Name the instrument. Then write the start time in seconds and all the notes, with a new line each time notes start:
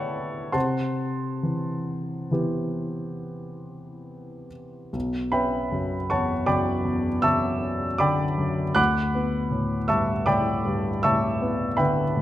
grand piano
Already playing: A2 D3 B3 E4 G4 A4 B4 C#5 D5 E5 F#5 G5 A5 B5 C#6
0.52 C3 C5 F#5 A5 C6
1.43 E3
2.31 E3 B3 E4 G4
4.93 B1
5.32 C#4 B4 E5 G5 B5
5.72 F#2
6.10 E2 C#5 F#5 A5 C#6
6.46 F#2 D5 G5 B5 D6
6.85 E2
7.22 F#2 E5 A5 C#6 E6
7.61 C#4
7.98 D3 D5 G5 B5 D6
8.38 F#2
8.75 D2 F#5 B5 D6 F#6
9.15 B3
9.51 A2
9.88 G2 E5 A5 C#6 E6
10.26 A2 D5 G5 B5 D6
10.65 G2
11.03 A2 E5 A5 C#6 E6
11.41 B3
11.77 D3 B4 E5 G5 B5
12.16 A2